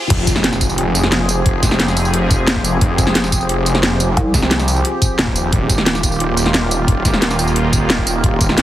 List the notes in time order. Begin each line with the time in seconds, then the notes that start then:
Already playing: riser
0.10 F1 F3 C4 G4 G#4, kick, closed hi-hat, crash, impact
0.27 kick, closed hi-hat, tambourine
0.36 snare
0.44 snare, closed hi-hat
0.53 snare, tambourine
0.61 kick, closed hi-hat, tambourine
0.70 tambourine
0.78 closed hi-hat
0.95 closed hi-hat, tambourine
1.03 snare
1.12 snare, closed hi-hat
1.29 closed hi-hat, tambourine
1.46 F1, kick, closed hi-hat
1.63 kick, snare, closed hi-hat, tambourine
1.71 snare
1.80 snare, closed hi-hat
1.88 snare, tambourine
1.97 open hi-hat, tambourine
2.05 tambourine
2.14 closed hi-hat
2.31 kick, closed hi-hat, tambourine
2.48 snare, closed hi-hat
2.56 kick
2.65 closed hi-hat, tambourine
2.81 F1, kick, closed hi-hat
2.98 kick, closed hi-hat, tambourine
3.07 snare
3.15 snare, closed hi-hat
3.24 snare, tambourine
3.32 kick, closed hi-hat, tambourine
3.41 tambourine
3.49 closed hi-hat
3.66 closed hi-hat, tambourine
3.75 snare
3.83 snare, closed hi-hat
4.00 closed hi-hat, tambourine
4.17 C2, kick, closed hi-hat
4.34 C2, kick, snare, closed hi-hat, tambourine
4.42 snare
4.51 snare, closed hi-hat
4.59 snare, tambourine
4.68 open hi-hat, tambourine
4.76 tambourine
4.85 closed hi-hat
5.02 kick, closed hi-hat, tambourine
5.19 D#1, snare, closed hi-hat
5.27 kick
5.36 closed hi-hat, tambourine
5.52 D#1 D#3 A#3 F4, kick, closed hi-hat
5.70 kick, closed hi-hat, tambourine
5.78 snare
5.86 snare, closed hi-hat
5.95 snare, tambourine
6.03 kick, closed hi-hat, tambourine
6.12 tambourine
6.20 closed hi-hat
6.37 closed hi-hat, tambourine
6.46 snare
6.54 snare, closed hi-hat
6.71 closed hi-hat, tambourine
6.88 D#1, kick, closed hi-hat
7.05 kick, snare, closed hi-hat, tambourine
7.14 snare
7.22 snare, closed hi-hat
7.31 snare, tambourine
7.39 open hi-hat, tambourine
7.47 tambourine
7.56 closed hi-hat
7.73 kick, closed hi-hat, tambourine
7.90 snare, closed hi-hat
7.98 kick
8.07 closed hi-hat, tambourine
8.24 D#1, kick, closed hi-hat
8.41 kick, closed hi-hat, tambourine
8.49 snare
8.58 snare, closed hi-hat